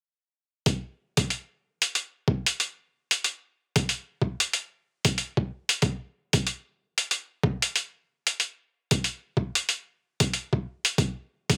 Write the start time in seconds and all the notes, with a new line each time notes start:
0.66 kick, closed hi-hat
1.17 kick, closed hi-hat
1.30 closed hi-hat
1.82 closed hi-hat
1.95 closed hi-hat
2.28 kick
2.46 closed hi-hat
2.60 closed hi-hat
3.11 closed hi-hat
3.24 closed hi-hat
3.76 kick, closed hi-hat
3.89 closed hi-hat
4.22 kick
4.40 closed hi-hat
4.53 closed hi-hat
5.05 kick, closed hi-hat
5.18 closed hi-hat
5.37 kick
5.69 closed hi-hat
5.82 kick, closed hi-hat
6.33 kick, closed hi-hat
6.47 closed hi-hat
6.98 closed hi-hat
7.11 closed hi-hat
7.44 kick
7.62 closed hi-hat
7.76 closed hi-hat
8.27 closed hi-hat
8.40 closed hi-hat
8.91 kick, closed hi-hat
9.04 closed hi-hat
9.37 kick
9.55 closed hi-hat
9.69 closed hi-hat
10.20 kick, closed hi-hat
10.34 closed hi-hat
10.53 kick
10.85 closed hi-hat
10.98 kick, closed hi-hat
11.50 kick, closed hi-hat